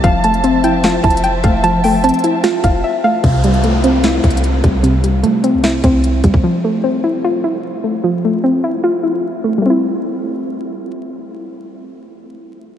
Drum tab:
HH |x-----------x-----x-----x-----------x-----------x-----------x---x---x---x-----------x-----------|x-----------o-----------x--x--x--x--x-----------x-----------x-----------------------------------|x-----------x-----x-----x-----------x-----------x-----------x---x---x---x-----------x-----------|x-----------x-----------x-----------x-----------x-----------x-----------x-----------x-----------|
SD |------------------------------------------------o-----------------------------------------------|------------------------------------------------o-----------------------------------------------|------------------------------------------------o-----------------------------------------------|------------------------------------------------o-----------------------------------------------|
BD |o-----------------------------------------------------------o-----------------------o-----------|------------------------------------------------------------o-----------------------------------|o-----------------------------------------------------------o-----------------------o-----------|------------------------------------------------------------o-----------------------o-----o-----|

HH |------------------------------------------------------------------------------------------------|------------------------------------------------------------------------------------------------|------------------------------------------------------------------------------------------------|------------------------------------------------------------------------------------------------|
SD |------------------------------------------------------------------------------------------------|------------------------------------------------------------------------------------------------|------------------------------------------------------------------------------------------------|------------------------------------------------------------------------------------------------|
BD |------------------------------------------------------------------------------------------------|------------------------------------------------------------------------------------------------|------------------------------------------------------------------------------------------------|------------------------------------------------------------------------------------------------|